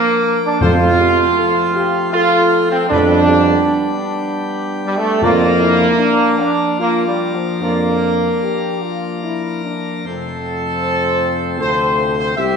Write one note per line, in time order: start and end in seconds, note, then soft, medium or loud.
0.00 0.60 F3 medium
0.00 0.39 A#3 loud
0.00 0.61 A#3 medium
0.00 0.57 D4 medium
0.00 0.61 A#4 medium
0.00 0.61 D5 medium
0.45 0.61 D4 loud
0.61 1.24 F2 loud
0.61 1.71 F2 loud
0.61 2.87 F3 medium
0.61 2.91 A3 medium
0.61 2.91 C4 medium
0.61 2.10 F4 loud
0.61 0.97 A4 medium
0.61 0.89 A4 medium
0.61 2.91 C5 medium
0.61 0.88 C5 medium
0.99 1.35 G4 medium
1.38 1.73 A4 loud
1.75 2.11 G4 medium
2.13 2.67 F4 loud
2.13 2.87 A4 loud
2.71 2.89 C4 loud
2.89 3.55 F2 loud
2.89 4.02 F2 loud
2.89 5.22 G3 medium
2.89 5.22 B3 medium
2.89 4.40 D4 loud
2.89 5.22 G4 medium
2.89 3.19 G4 medium
2.89 3.26 A4 loud
2.89 3.19 B4 medium
3.29 3.67 G4 medium
3.67 5.18 D4 loud
4.84 4.96 G3 loud
4.97 5.22 A3 loud
5.21 6.35 F2 loud
5.21 5.86 F2 loud
5.21 10.05 F3 medium
5.21 10.05 A#3 medium
5.21 6.39 A#3 loud
5.21 10.05 D4 medium
5.21 5.57 F4 loud
5.21 5.50 F4 medium
5.21 10.05 A#4 medium
5.21 5.50 D5 medium
5.60 5.96 E4 medium
5.98 6.61 D4 medium
6.40 6.79 D4 loud
6.78 7.04 A#3 loud
6.78 7.57 F4 medium
7.07 7.32 G3 medium
7.35 7.62 F3 medium
7.61 8.30 F2 medium
7.61 9.23 A#3 loud
7.61 8.31 D4 medium
7.61 7.92 F4 medium
7.61 7.92 D5 medium
8.42 8.80 G4 medium
8.82 9.23 F4 medium
9.23 9.61 E4 medium
9.65 10.02 D4 medium
10.05 11.61 F2 medium
10.05 12.57 C3 medium
10.05 11.56 F3 medium
10.05 12.34 A3 medium
10.05 11.56 C4 medium
10.05 12.57 C4 medium
10.05 11.56 A4 loud
10.05 12.57 C5 medium
10.82 11.56 C5 medium
11.59 12.37 D2 medium
11.59 12.33 F3 medium
11.59 12.33 C4 medium
11.59 12.34 A4 medium
11.59 12.14 C5 loud
12.18 12.36 C5 medium
12.37 12.57 C2 medium
12.37 12.57 G3 medium
12.37 12.57 C4 medium
12.37 12.57 G4 medium
12.37 12.57 E5 loud